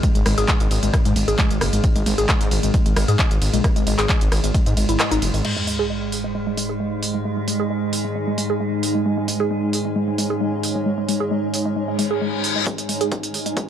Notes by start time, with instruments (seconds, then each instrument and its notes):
Already playing: synth drone G#2 G#3
0.03 synth arpeggio sound G#3, kick, closed hi-hat, ride
0.15 detuned saw bass G#1, synth arpeggio sound G#3, closed hi-hat
0.26 detuned saw bass G#1, synth arpeggio sound G#3, cross-stick, open hi-hat, ride
0.38 detuned saw bass G#1, synth arpeggio sound G#4, closed hi-hat
0.48 synth arpeggio sound G#3, kick, clap, closed hi-hat, ride
0.60 detuned saw bass G#1, closed hi-hat
0.71 detuned saw bass G#1, open hi-hat, ride
0.83 detuned saw bass G#1, synth arpeggio sound G#3, closed hi-hat
0.94 synth arpeggio sound G#3, kick, cross-stick, closed hi-hat, ride
1.05 detuned saw bass G#2, synth arpeggio sound G#3, closed hi-hat
1.16 detuned saw bass G#1, synth arpeggio sound G#3, open hi-hat, ride
1.28 detuned saw bass G#1, synth arpeggio sound G#4, closed hi-hat
1.39 synth arpeggio sound G#3, kick, clap, closed hi-hat, ride
1.51 detuned saw bass G#1, closed hi-hat
1.61 detuned saw bass F#1, cross-stick, open hi-hat, ride
1.73 detuned saw bass G#1, synth arpeggio sound G#3, closed hi-hat
1.84 synth arpeggio sound G#3, kick, closed hi-hat, ride
1.96 detuned saw bass G#1, synth arpeggio sound G#3, closed hi-hat
2.06 detuned saw bass G#1, synth arpeggio sound G#3, open hi-hat, ride
2.18 detuned saw bass G#1, synth arpeggio sound G#4, closed hi-hat
2.29 synth arpeggio sound G#3, kick, cross-stick, clap, closed hi-hat, ride
2.41 detuned saw bass G#2, closed hi-hat
2.51 detuned saw bass G#1, open hi-hat, ride
2.63 detuned saw bass G#1, synth arpeggio sound G#3, closed hi-hat
2.74 synth arpeggio sound G#3, kick, closed hi-hat, ride
2.86 detuned saw bass G#1, synth arpeggio sound G#3, closed hi-hat
2.96 detuned saw bass G#1, synth arpeggio sound G#3, cross-stick, open hi-hat, ride
3.08 detuned saw bass G#2, synth arpeggio sound G#4, closed hi-hat
3.19 synth arpeggio sound G#3, kick, clap, closed hi-hat, ride
3.31 detuned saw bass G#1, closed hi-hat
3.42 detuned saw bass G#1, open hi-hat, ride
3.54 detuned saw bass A#1, synth arpeggio sound G#3, closed hi-hat
3.64 synth arpeggio sound G#3, kick, cross-stick, closed hi-hat, ride
3.76 detuned saw bass G#1, synth arpeggio sound G#3, closed hi-hat
3.87 detuned saw bass G#1, synth arpeggio sound G#3, open hi-hat, ride
3.99 detuned saw bass G#1, synth arpeggio sound G#4, clap, closed hi-hat
4.09 synth arpeggio sound G#3, kick, clap, closed hi-hat, ride
4.21 detuned saw bass G#1, closed hi-hat
4.32 detuned saw bass G#1, cross-stick, open hi-hat, ride
4.44 detuned saw bass G#1, synth arpeggio sound G#3, closed hi-hat
4.54 synth arpeggio sound G#3, kick, closed hi-hat, ride
4.66 detuned saw bass G#2, synth arpeggio sound G#3, closed hi-hat
4.77 detuned saw bass G#1, synth arpeggio sound G#3, open hi-hat, ride
4.89 detuned saw bass G#1, synth arpeggio sound E4, closed hi-hat
5.00 synth arpeggio sound G#3, cross-stick, clap, closed hi-hat, ride
5.11 detuned saw bass G#1, synth arpeggio sound D#4, closed hi-hat
5.22 detuned saw bass F#1, open hi-hat, ride
5.34 detuned saw bass G#1, synth arpeggio sound G#3, open hi-hat
5.45 synth drone G#2 G#3, ambient pad G#3, synth arpeggio sound G#3, crash, sub drop
5.57 synth arpeggio sound G#3
5.64 synth arpeggio sound G#3, ambient pad D#4, open hi-hat
5.79 synth arpeggio sound G#4
5.90 synth arpeggio sound G#3
6.01 ambient pad D#5
6.12 open hi-hat
6.24 synth arpeggio sound G#3
6.35 synth arpeggio sound G#3
6.47 synth arpeggio sound G#3
6.57 synth arpeggio sound G#3, open hi-hat
6.69 synth arpeggio sound G#4
6.80 synth arpeggio sound G#3
6.87 ambient pad G#5
7.03 open hi-hat
7.14 synth arpeggio sound G#3
7.25 synth arpeggio sound G#3
7.37 synth arpeggio sound G#3
7.48 synth arpeggio sound G#3, open hi-hat
7.60 synth arpeggio sound G#4
7.70 synth arpeggio sound G#3
7.93 open hi-hat
8.05 synth arpeggio sound G#3
8.15 synth arpeggio sound G#3
8.27 synth arpeggio sound G#3
8.38 synth arpeggio sound G#3, open hi-hat
8.50 synth arpeggio sound G#4
8.61 synth arpeggio sound G#3
8.83 open hi-hat
8.95 synth arpeggio sound G#3
9.06 synth arpeggio sound G#3
9.18 synth arpeggio sound G#3
9.28 synth arpeggio sound G#3, ambient pad C#5, open hi-hat
9.40 synth arpeggio sound G#4
9.51 synth arpeggio sound G#3
9.73 open hi-hat
9.85 synth arpeggio sound G#3
9.96 synth arpeggio sound G#3
10.08 synth arpeggio sound G#3
10.18 synth arpeggio sound G#3, open hi-hat
10.30 synth arpeggio sound G#4
10.41 synth arpeggio sound G#3
10.63 open hi-hat
10.75 synth arpeggio sound G#3
10.86 synth arpeggio sound G#3
10.98 synth arpeggio sound G#3
11.09 synth arpeggio sound G#3, open hi-hat
11.20 synth arpeggio sound G#4
11.31 synth arpeggio sound G#3
11.54 open hi-hat
11.66 synth arpeggio sound G#3
11.76 synth arpeggio sound G#3, reverse cymbal
11.88 synth arpeggio sound G#3
11.99 synth arpeggio sound G#3, open hi-hat
12.11 synth arpeggio sound G#4
12.21 synth arpeggio sound G#3
12.44 open hi-hat
12.56 synth arpeggio sound G#3
12.66 synth arpeggio sound G#3, kick, closed hi-hat, riser
12.78 synth arpeggio sound G#3, closed hi-hat
12.89 synth arpeggio sound G#3, open hi-hat
13.01 synth arpeggio sound G#4, closed hi-hat
13.12 synth arpeggio sound G#3, kick, closed hi-hat
13.23 closed hi-hat
13.34 open hi-hat
13.46 synth arpeggio sound G#3, closed hi-hat
13.57 synth arpeggio sound G#3, ambient pad D#5, kick, closed hi-hat